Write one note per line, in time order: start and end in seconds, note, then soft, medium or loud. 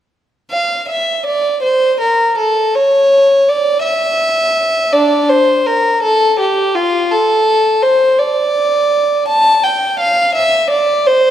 0.51 0.86 F5 medium
0.89 1.25 E5 soft
1.26 1.62 D5 medium
1.63 1.99 C5 medium
2.00 2.36 A#4 soft
2.38 2.73 A4 medium
2.75 3.47 C#5 medium
3.49 3.84 D5 medium
3.83 4.90 E5 medium
4.93 5.26 D4 medium
4.93 5.29 D5 medium
5.29 5.65 C5 medium
5.67 6.02 A#4 medium
6.03 6.38 A4 medium
6.40 6.75 G4 medium
6.75 7.11 F4 medium
7.12 7.83 A4 medium
7.83 8.18 C5 medium
8.19 9.28 D5 medium
9.28 9.63 A5 medium
9.64 9.99 G5 medium
10.00 10.35 F5 medium
10.35 10.70 E5 medium
10.71 11.06 D5 medium
11.07 11.30 C5 medium